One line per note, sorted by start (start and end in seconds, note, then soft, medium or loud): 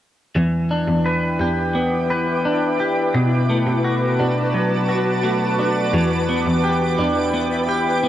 0.35 0.85 E2 medium
0.35 3.15 E3 medium
0.35 3.12 E4 medium
0.35 8.09 B4 medium
0.35 3.12 G5 medium
0.35 8.09 D6 medium
0.71 2.45 D4 medium
0.88 1.38 E2 medium
1.06 2.10 B4 medium
1.40 2.76 E2 medium
1.40 2.79 G4 soft
1.75 3.49 B3 medium
2.10 3.53 B4 medium
2.45 4.19 D4 medium
2.80 3.22 G4 soft
3.14 5.94 B2 medium
3.14 3.65 B2 medium
3.14 5.91 F#4 medium
3.14 5.91 A5 medium
3.50 5.23 A3 medium
3.67 4.17 B2 medium
3.84 4.88 F#4 medium
4.19 5.90 B2 medium
4.19 5.59 D4 medium
4.54 5.93 F#3 medium
4.89 6.01 F#4 medium
5.24 6.01 A3 medium
5.59 6.98 D4 medium
5.93 6.43 E2 medium
5.93 8.09 E3 medium
5.93 8.09 E4 medium
5.93 8.09 G5 medium
6.29 7.33 B3 medium
6.46 6.96 E2 medium
6.64 7.67 G4 medium
6.98 8.09 E2 medium
6.98 8.09 D4 medium
7.34 8.03 B3 medium
7.69 8.09 G4 medium
8.03 8.09 B3 medium